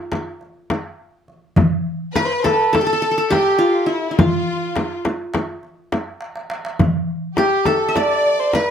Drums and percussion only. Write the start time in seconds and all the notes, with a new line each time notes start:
0.12 darbuka tek, frame drum
0.41 darbuka ka
0.70 darbuka tek, frame drum
1.28 darbuka ka
1.56 darbuka dum, frame drum
2.15 darbuka tek, frame drum
2.45 darbuka tek, frame drum
2.74 darbuka tek, frame drum
3.03 darbuka ka
3.31 darbuka tek, frame drum
3.91 darbuka ka
4.19 frame drum, darbuka dum
4.76 darbuka tek, frame drum
5.05 darbuka tek, frame drum
5.34 darbuka tek, frame drum
5.63 darbuka ka
5.92 darbuka tek, frame drum
6.21 darbuka tek
6.36 darbuka ka
6.50 darbuka tek
6.65 darbuka ka
6.79 frame drum, darbuka dum
7.37 darbuka tek, frame drum
7.66 darbuka tek, frame drum
7.96 darbuka tek, frame drum
8.26 darbuka ka
8.53 darbuka tek, frame drum